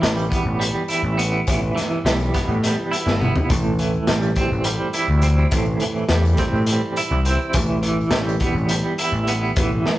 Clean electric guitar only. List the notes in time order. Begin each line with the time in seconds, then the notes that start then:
Already playing: E3 E4
0.02 G3
0.30 B3
0.60 G3
0.89 E4
1.18 B3
1.47 E3
1.75 E3
2.05 G3
2.34 B3
2.63 G3
2.91 E4
3.20 B3
3.50 A2
3.79 E3
4.09 G3
4.37 C4
4.65 G3
4.94 E4
5.23 C4
5.52 A2
5.82 E3
6.10 G3
6.39 C4
6.68 G3
6.97 E4
7.26 C4
7.54 E3
7.83 E3
8.12 G3
8.41 B3
8.70 G3
8.99 E4
9.28 B3
9.59 E3
9.87 E3